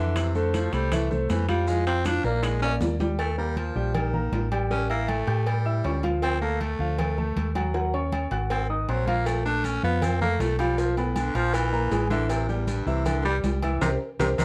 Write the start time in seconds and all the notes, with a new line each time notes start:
Already playing: F2 D3 E3 E4 E5
0.16 C3, high bongo, high conga, high timbale, maracas
0.35 D3 A3 A4 C5, high conga, maracas
0.54 F3, high bongo, high conga, high timbale, maracas
0.73 C2 G3 A3 A4 C5, high bongo, high conga, high timbale, maracas
0.92 E3 A3 E4 E5, high bongo, high conga, low conga, high timbale, maracas
1.10 C3 A3 A4 C5, high bongo, high conga, low conga, maracas
1.29 F2 E3, high bongo, low bongo, high conga, high timbale, maracas
1.48 F3 G3 F4 F5, high bongo, high conga, high timbale, maracas
1.67 F3 G#3 F4 F5, high bongo, high conga, maracas
1.86 C4, high conga, high timbale, maracas
2.05 F3 D4 F4 F5, high bongo, high conga, high timbale, maracas
2.24 A#1 A#3 A#4 D5, high bongo, high conga, maracas
2.43 G#3, high bongo, high conga, high timbale, maracas
2.62 A#3 C#4 A#4 D5, high bongo, high conga, high timbale, maracas
2.81 D#2, high bongo, low bongo, high conga, low timbale, maracas
3.00 G3 G4 G5, high bongo, high conga, low timbale, maracas
3.19 A3, cowbell, high conga, low agogo
3.38 G3 A#3 A#4 A#5, high conga
3.57 F3, cowbell, high conga, low agogo
3.75 A#1 G3 G4 G5, high conga
3.94 D#3, cowbell, high conga, low conga, low agogo
4.13 A#3 A#4 A#5, high conga, low conga
4.32 A1, cowbell, high conga, low timbale, low agogo
4.52 G3 G4 G5, cowbell, low agogo
4.70 G3 C#4 G4 G5, cowbell, high conga
4.89 A#3 E4 E5 E6, high conga, low agogo
5.08 A3, cowbell, high conga, low agogo
5.27 A2 G4 G5 G6, cowbell, high conga, low agogo
5.46 G3, cowbell, high conga, low agogo
5.65 E4 E5 E6, high conga
5.84 D2 C#4 C#5 C#6, cowbell, high conga, low timbale, low agogo
6.03 F3 F4 F5, cowbell, high conga, low agogo
6.22 C4, cowbell, high conga, low agogo
6.41 A3 A#3 A4 A5, high conga
6.60 A3, cowbell, high conga, low agogo
6.79 D2 F3 F4 F5, high conga
6.98 A3, cowbell, high conga, low conga, low agogo
7.18 A3 A4 A5, high conga, low conga
7.36 D#2, cowbell, high conga, low agogo
7.55 F#3 F#4 F#5, cowbell, high conga, low agogo
7.74 F#3 F#4 F#5, cowbell, high conga
7.94 C#4 C#5 C#6, high conga, low agogo
8.12 cowbell, high conga, low agogo
8.31 G#1 F#4 F#5 F#6, cowbell, high conga, low agogo
8.50 C4, cowbell, high conga, low agogo
8.69 D#3 D#4 D#5 D#6, high conga
8.88 A#1 F#3 C4 C5 C6, cowbell, high conga, low agogo
9.07 F3 A#3 F4 F5, cowbell, high conga, low agogo
9.26 A3, cowbell, high conga, low agogo, maracas
9.45 A3 D4 A4 A5, high conga, maracas
9.64 C#4, cowbell, high conga, low agogo, maracas
9.83 F2 F3 B3 F4 F5, high conga, maracas
10.02 C4, cowbell, high conga, low conga, low agogo, maracas
10.21 A3 A#3 A4 A5, high conga, low conga, maracas
10.40 B1 A3, cowbell, high conga, low timbale, low agogo, maracas
10.59 F3 G3 F4 F5, cowbell, low agogo, maracas
10.78 F3 F4 F5, cowbell, high conga, maracas
10.97 A2 B3 B4 B5, high conga, low agogo, maracas
11.16 D3, cowbell, high conga, low agogo, maracas
11.35 A#1 F3 F4 F5 F6, cowbell, high conga, low agogo, maracas
11.54 E3, cowbell, high conga, low agogo, maracas
11.73 A#3 A#4 A#5, high conga, maracas
11.91 A1 G#3 G#4 G#5, cowbell, high conga, low timbale, low agogo, maracas
12.10 D3 E3 E4 E5, cowbell, high conga, low agogo, maracas
12.29 C3, cowbell, high conga, low agogo, maracas
12.48 E2 G3 G4 G5, high conga, maracas
12.67 G2, cowbell, high conga, low agogo, maracas
12.86 C2 C3 E3 E4 E5, high conga, maracas
13.06 D3, cowbell, high conga, low conga, low agogo, maracas
13.25 G3 G4 G5, high conga, maracas
13.43 C2, cowbell, high conga, low timbale, low agogo, maracas
13.62 E3 E4 E5, cowbell, high conga, low agogo, maracas
13.81 C2 C3 G4 A#4 C5, cowbell, low conga, high timbale, maracas
14.19 C2 C3 G4 A#4 C5, cowbell, low conga, high timbale, maracas
14.38 C2 C3 G4 A#4 C5, cowbell, low conga, high timbale, maracas